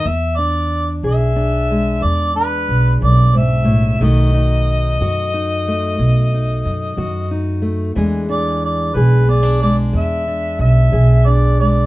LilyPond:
<<
  \new Staff \with { instrumentName = "Harmonica" } { \time 12/8 \key e \mixolydian \tempo 4. = 61 e''8 d''4 e''4. d''8 b'4 d''8 e''4 | dis''1~ dis''4 r4 | r8 d''8 d''8 b'8 d''8 d''8 e''4 e''4 d''8 d''8 | }
  \new Staff \with { instrumentName = "Steel-string acoustic guitar" } { \time 12/8 \key e \mixolydian << { r8 d'4 gis'8 d'8 gis4 d'2~ d'8 | <dis a dis' fis'>8 dis'4 fis'8 dis'8 a4 dis'4 fis'8 dis'8 a8 | <e gis d' gis'>8 d'4 gis'8 b16 d'16 gis4 d'4 gis'8 d'8 gis8 | } \\ { e,4 r8 e4 r8 e,4 r8 fis,8 gis,8 a,8 | b,4 r8 dis4 r8 b,4 r8 dis4 r8 | e,4 r8 e4 r8 e,4 r8 e4 r8 | } >> }
  \new Staff \with { instrumentName = "Upright bass" } { \clef bass \time 12/8 \key e \mixolydian e,4. b,,4. e,4 b,,8 b,,4. | b,,4. fis,4. b,,4 fis,8 fis,4. | e,4. b,,4. e,4 b,,8 b,,4. | }
>>